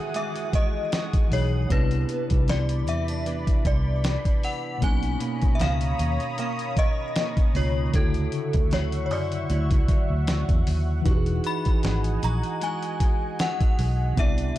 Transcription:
Already playing: tine electric piano D#3 E3 F#4 G#4 A4 F#5, steel-string acoustic guitar E3 G#3 F#4, analog synth pad G#4 F#5 D#6, synth bell E5, downlifter
0.14 steel-string acoustic guitar G#3 F#4, synth bell E5, closed hi-hat
0.36 closed hi-hat
0.53 steel-string acoustic guitar G#3, synth bell D#5, kick, closed hi-hat
0.92 steel-string acoustic guitar G#3 D#4 F#4, snare, closed hi-hat
1.13 kick, closed hi-hat
1.29 fingered electric bass B1, tine electric piano E3 D#4 F#4, synth bell C#5, open hi-hat
1.34 tine electric piano G#4
1.66 tine electric piano C3 B3
1.70 fingered electric bass C2, steel-string acoustic guitar C3 D4, tine electric piano D4, synth bell B4, analog synth pad D5 B5, kick, closed hi-hat
1.75 tine electric piano E4
1.91 closed hi-hat
2.09 steel-string acoustic guitar B3, closed hi-hat
2.30 fingered electric bass C2, kick, closed hi-hat
2.48 steel-string acoustic guitar E3, synth bell D5, snare, closed hi-hat
2.69 closed hi-hat
2.87 fingered electric bass E2, steel-string acoustic guitar C4, synth bell E5, closed hi-hat
3.08 steel-string acoustic guitar D4, closed hi-hat
3.26 steel-string acoustic guitar E3 B3 D4, closed hi-hat
3.47 kick, closed hi-hat
3.65 fingered electric bass C2, steel-string acoustic guitar E3, synth bell D5, kick, closed hi-hat
4.04 steel-string acoustic guitar E3 B3 D4, snare, closed hi-hat
4.25 kick, closed hi-hat
4.43 synth bell F#5, open hi-hat
4.78 tine electric piano B2 A#3, analog synth pad C#5 A#5 D#6
4.82 fingered electric bass B1, steel-string acoustic guitar B2 C#4, tine electric piano C#4, synth bell G#5, kick, closed hi-hat
4.86 tine electric piano D#4
5.03 closed hi-hat
5.20 steel-string acoustic guitar A#3, closed hi-hat
5.42 kick, closed hi-hat
5.55 synth bell E5
5.59 fingered electric bass C#2, steel-string acoustic guitar D#3, synth bell F5, snare, closed hi-hat
5.81 closed hi-hat
5.99 fingered electric bass D#2, steel-string acoustic guitar C#4, closed hi-hat
6.20 closed hi-hat
6.38 steel-string acoustic guitar D#3 A#3 C#4, synth bell F5, closed hi-hat
6.59 closed hi-hat
6.77 steel-string acoustic guitar D#3, synth bell D#5, kick, closed hi-hat
7.16 steel-string acoustic guitar D#3 A#3 C#4, snare, closed hi-hat
7.37 kick, closed hi-hat
7.53 fingered electric bass C#2, tine electric piano B2 A#3 C#4, synth bell C#5, open hi-hat
7.57 tine electric piano F4
7.89 tine electric piano C#3 D3
7.94 fingered electric bass D2, steel-string acoustic guitar D3 E4, tine electric piano E4, synth bell A4, analog synth pad E5 F#5 C#6, kick, closed hi-hat
7.98 tine electric piano F#4
8.14 closed hi-hat
8.32 closed hi-hat
8.53 fingered electric bass D2, kick, closed hi-hat
8.71 steel-string acoustic guitar F#3, synth bell C#5, snare, closed hi-hat
8.92 closed hi-hat
9.06 synth bell C#5
9.11 fingered electric bass F#2, steel-string acoustic guitar E4, synth bell D5, open hi-hat
9.32 closed hi-hat
9.50 fingered electric bass D2, steel-string acoustic guitar F#3 E4, closed hi-hat
9.71 fingered electric bass C#2, kick, closed hi-hat
9.88 steel-string acoustic guitar F#3, kick, closed hi-hat
10.10 fingered electric bass D2
10.27 steel-string acoustic guitar F#3 E4, snare, closed hi-hat
10.49 fingered electric bass E2, kick, closed hi-hat
10.67 fingered electric bass D#2, open hi-hat
11.02 tine electric piano E3 D#4, steel-string acoustic guitar E3, closed hi-hat
11.06 fingered electric bass E1, steel-string acoustic guitar F#4, tine electric piano F#4, analog synth pad D#5 G#5, kick
11.10 tine electric piano G4
11.16 tine electric piano G#4
11.26 closed hi-hat
11.44 steel-string acoustic guitar D#4, synth bell B5, closed hi-hat
11.65 kick, closed hi-hat
11.83 fingered electric bass G#1, steel-string acoustic guitar G#3, snare, closed hi-hat
12.04 closed hi-hat
12.22 fingered electric bass A#1, steel-string acoustic guitar F#4, synth bell A#5, closed hi-hat
12.43 closed hi-hat
12.61 steel-string acoustic guitar G#3 D#4 F#4, synth bell G#5, closed hi-hat
12.83 closed hi-hat
13.00 steel-string acoustic guitar G#3, kick, closed hi-hat
13.39 steel-string acoustic guitar G#3 D#4 F#4, synth bell F#5, snare, closed hi-hat
13.61 kick, closed hi-hat
13.79 fingered electric bass B1, open hi-hat
14.13 tine electric piano C3 B3, steel-string acoustic guitar C3, analog synth pad D5 B5 C6, closed hi-hat
14.17 fingered electric bass C2, steel-string acoustic guitar D4, tine electric piano E4, synth bell E5, kick
14.22 tine electric piano D5
14.38 closed hi-hat

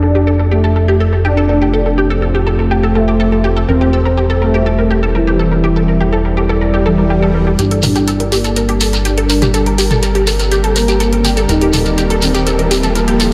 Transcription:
Already playing: analog synth bass F1, ambient pad A3 C4 F4 C5, analog polysynth D4
0.03 synth arpeggio sound A4
0.15 synth arpeggio sound G4
0.27 synth arpeggio sound A4
0.40 synth arpeggio sound A4
0.51 analog polysynth A3, synth arpeggio sound G4
0.64 synth arpeggio sound A4
0.76 synth arpeggio sound A4
0.88 synth arpeggio sound G4
1.00 synth arpeggio sound A4
1.13 synth arpeggio sound A4
1.25 analog polysynth D4, synth arpeggio sound G4
1.37 synth arpeggio sound A4
1.49 synth arpeggio sound A4
1.62 synth arpeggio sound G4
1.74 ambient pad F4, synth arpeggio sound A4
1.86 synth arpeggio sound A4
1.98 synth arpeggio sound G4
2.10 synth arpeggio sound A4
2.22 synth arpeggio sound A4
2.35 synth arpeggio sound G4
2.47 synth arpeggio sound A4
2.59 synth arpeggio sound A4
2.71 synth arpeggio sound G4
2.83 synth arpeggio sound A4
2.95 analog polysynth A3, synth arpeggio sound A4
3.08 synth arpeggio sound G4
3.20 synth arpeggio sound A4
3.32 synth arpeggio sound A4
3.44 synth arpeggio sound G4
3.57 synth arpeggio sound A4
3.69 analog synth bass E1, ambient pad G3 E4, analog polysynth C4, synth arpeggio sound A#4
3.81 synth arpeggio sound G4
3.93 synth arpeggio sound A4
4.05 synth arpeggio sound A#4
4.17 synth arpeggio sound G4
4.30 synth arpeggio sound A4
4.42 analog polysynth A3, synth arpeggio sound A#4
4.54 synth arpeggio sound G4
4.66 synth arpeggio sound A4
4.79 synth arpeggio sound A#4
4.91 synth arpeggio sound G4
5.03 synth arpeggio sound A4
5.15 analog polysynth E3, synth arpeggio sound A#4
5.27 synth arpeggio sound G4
5.39 synth arpeggio sound A4
5.52 synth arpeggio sound A#4
5.63 synth arpeggio sound G4, ambient pad D5
5.76 synth arpeggio sound A4
5.88 synth arpeggio sound A#4
6.01 synth arpeggio sound G4
6.13 synth arpeggio sound A4
6.25 synth arpeggio sound A#4
6.37 synth arpeggio sound G4
6.49 synth arpeggio sound A4
6.61 synth arpeggio sound A#4, swell
6.74 synth arpeggio sound G4
6.86 analog polysynth E3, synth arpeggio sound A4
6.98 synth arpeggio sound A#4
7.10 synth arpeggio sound G4
7.22 synth arpeggio sound A4
7.35 synth arpeggio sound A#4
7.47 synth arpeggio sound G4
7.59 analog synth bass G1, ambient pad G3 A#3 D4 A#4, analog polysynth D4, synth arpeggio sound G4, closed hi-hat, riser, shekere
7.71 synth arpeggio sound A4, closed hi-hat
7.83 synth arpeggio sound A#4, mid tom, open hi-hat, shekere
7.95 synth arpeggio sound G4, closed hi-hat, shekere
8.07 synth arpeggio sound A4, closed hi-hat, shekere
8.20 synth arpeggio sound A#4, closed hi-hat
8.32 analog polysynth A#3, synth arpeggio sound G4, open hi-hat, shekere
8.44 synth arpeggio sound A4, closed hi-hat, shekere
8.56 synth arpeggio sound A#4, closed hi-hat, shekere
8.69 synth arpeggio sound G4, closed hi-hat
8.80 synth arpeggio sound A4, open hi-hat, shekere
8.93 synth arpeggio sound A#4, closed hi-hat, shekere
9.05 analog polysynth D4, synth arpeggio sound G4, closed hi-hat, shekere
9.18 synth arpeggio sound A4, closed hi-hat
9.29 synth arpeggio sound A#4, open hi-hat, shekere
9.42 synth arpeggio sound G4, closed hi-hat, mid tom, shekere
9.54 ambient pad C4, synth arpeggio sound A4, closed hi-hat, shekere
9.66 synth arpeggio sound A#4, closed hi-hat
9.78 synth arpeggio sound G4, open hi-hat, shekere
9.91 synth arpeggio sound A4, closed hi-hat, mid tom, shekere
10.03 synth arpeggio sound A#4, closed hi-hat, shekere
10.15 synth arpeggio sound G4, closed hi-hat
10.27 synth arpeggio sound A4, open hi-hat, shekere
10.39 synth arpeggio sound A#4, closed hi-hat, shekere
10.52 synth arpeggio sound G4, closed hi-hat, shekere
10.64 synth arpeggio sound A4, closed hi-hat
10.76 analog polysynth A#3, synth arpeggio sound A#4, open hi-hat, shekere
10.88 synth arpeggio sound G4, closed hi-hat, shekere
11.00 synth arpeggio sound A4, closed hi-hat, shekere
11.13 synth arpeggio sound A#4, closed hi-hat
11.25 synth arpeggio sound G4, open hi-hat, shekere
11.37 synth arpeggio sound A4, closed hi-hat, shekere
11.49 analog synth bass D#1, ambient pad D#4, analog polysynth D#4, synth arpeggio sound A#4, closed hi-hat, shekere
11.61 synth arpeggio sound G4, closed hi-hat
11.73 synth arpeggio sound A4, mid tom, open hi-hat, shekere
11.85 synth arpeggio sound A#4, closed hi-hat, shekere
11.98 synth arpeggio sound G4, closed hi-hat, shekere
12.10 synth arpeggio sound A4, closed hi-hat
12.22 analog polysynth C4, synth arpeggio sound A#4, open hi-hat, shekere
12.34 synth arpeggio sound G4, closed hi-hat, shekere
12.47 synth arpeggio sound A4, closed hi-hat, shekere
12.59 synth arpeggio sound A#4, closed hi-hat
12.71 synth arpeggio sound G4, open hi-hat, shekere
12.83 synth arpeggio sound A4, closed hi-hat, shekere
12.95 analog polysynth A#3, synth arpeggio sound A#4, closed hi-hat, shekere
13.08 synth arpeggio sound G4, closed hi-hat
13.20 synth arpeggio sound A4, open hi-hat, shekere

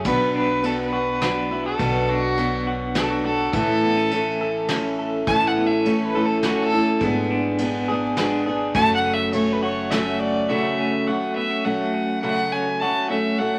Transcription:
Already playing: clean electric guitar F#3 C#4 G#4
0.05 upright bass B1, steel-string acoustic guitar B2 F#3 B3 D4 F#4, fiddle B4, kick, ride
0.35 clean electric guitar D4, fiddle B4
0.63 steel-string acoustic guitar F#3 B3 D4 F#4, fiddle A4, ride
0.80 fiddle B4
0.93 clean electric guitar F#4
1.21 steel-string acoustic guitar F#3 B3 D4 F#4, snare, ride
1.51 steel-string acoustic guitar B3 D4 F#4, clean electric guitar E4
1.65 clean electric guitar F#4, fiddle A4
1.79 upright bass B1, steel-string acoustic guitar B2 F#3 B3 D4 F#4, kick, ride
2.09 clean electric guitar D4, fiddle F#4
2.37 steel-string acoustic guitar F#3 B3 D4 F#4, ride
2.67 clean electric guitar F#4
2.94 steel-string acoustic guitar F#3 B3 D4 F#4, fiddle A4, snare, ride
3.11 fiddle F#4
3.24 steel-string acoustic guitar B3 D4 F#4, fiddle A4
3.53 upright bass A1, steel-string acoustic guitar A2 E3 A3 C#4 E4 A4, fiddle A4, kick, ride
3.83 clean electric guitar B3
3.97 clean electric guitar C#4
4.11 steel-string acoustic guitar A3 C#4 E4 A4, ride
4.41 clean electric guitar A4
4.68 steel-string acoustic guitar A3 C#4 E4 A4, snare, ride
4.99 clean electric guitar A4
5.27 upright bass A1, steel-string acoustic guitar A2 E3 A3 C#4 E4 A4, fiddle A5, kick, ride
5.47 fiddle F#5
5.57 clean electric guitar B3
5.67 fiddle E5
5.71 clean electric guitar C#4
5.85 steel-string acoustic guitar A3 C#4 E4 A4, fiddle C#5, ride
6.07 fiddle B4
6.14 steel-string acoustic guitar A3 C#4 E4 A4
6.25 fiddle A4
6.43 steel-string acoustic guitar A3 C#4 E4 A4, fiddle F#4, snare, ride
6.63 fiddle A4
6.73 steel-string acoustic guitar A3 C#4 E4 A4
7.00 upright bass G#1, steel-string acoustic guitar G#3 B3 D4 G#4, kick, ride
7.31 clean electric guitar D4
7.58 steel-string acoustic guitar G#3 B3 D4 G#4, ride
7.89 steel-string acoustic guitar B3 D4 G#4
8.17 steel-string acoustic guitar G#3 B3 D4 G#4, snare, ride
8.47 steel-string acoustic guitar B3 D4 G#4
8.74 upright bass F#1, steel-string acoustic guitar F#2 C#3 F#3 A3 C#4 F#4, fiddle A5, kick, ride
8.95 fiddle F#5
9.04 clean electric guitar C#4
9.14 fiddle E5
9.33 steel-string acoustic guitar F#3 A3 C#4 F#4, fiddle C#5, ride
9.53 fiddle B4
9.63 clean electric guitar F#4, fiddle C#5
9.91 steel-string acoustic guitar F#3 A3 C#4 F#4, fiddle E5, snare, ride
10.19 clean electric guitar F#4, fiddle D5
10.49 steel-string acoustic guitar F#2 C#3 F#3 A3 C#4 F#4, fiddle E5
10.79 clean electric guitar C#4
11.07 steel-string acoustic guitar F#3 A3 C#4 F#4, fiddle F#5
11.36 clean electric guitar B3, fiddle E5
11.51 clean electric guitar C#4
11.65 steel-string acoustic guitar F#3 A3 C#4 F#4, fiddle F#5
11.94 clean electric guitar C#4
12.22 steel-string acoustic guitar F#2 C#3 F#3 A3 C#4 F#4, fiddle F#5
12.52 clean electric guitar C#4, fiddle G#5
12.80 steel-string acoustic guitar F#3 A3 C#4 F#4, fiddle A5
13.09 steel-string acoustic guitar F#3 A3 C#4 F#4, fiddle E5
13.39 steel-string acoustic guitar F#3 A3 C#4 F#4, fiddle F#5

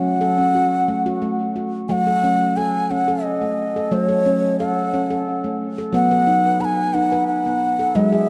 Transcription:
Already playing: handpan F#3 C#4, bansuri F#5
0.21 handpan A4
0.38 handpan C#4
0.55 handpan F#4
0.88 handpan A3
1.06 handpan F#4
1.22 handpan A3
1.56 handpan F#4
1.88 handpan F#3 A3, bansuri F#5 G#5
2.07 handpan A4
2.24 handpan C#4
2.57 handpan A4, bansuri G#5
2.91 handpan C#4, bansuri F#5
3.08 handpan A4
3.23 bansuri D#5
3.41 handpan A3
3.76 handpan A4
3.91 handpan F#3 A3, bansuri C#5
4.09 handpan A4
4.26 handpan C#4
4.59 handpan A4, bansuri F#5
4.94 handpan C#4
5.10 handpan A4
5.44 handpan A3
5.78 handpan A4
5.93 handpan F#3 B3, bansuri F#5
6.11 handpan B4
6.27 handpan D#4
6.60 handpan B4, bansuri B5
6.65 bansuri G#5
6.94 handpan D#4, bansuri F#5
7.12 handpan B4
7.27 bansuri F#5
7.46 handpan B3
7.79 handpan A4
7.95 handpan F#3 G#3, bansuri E5
8.12 handpan G#4

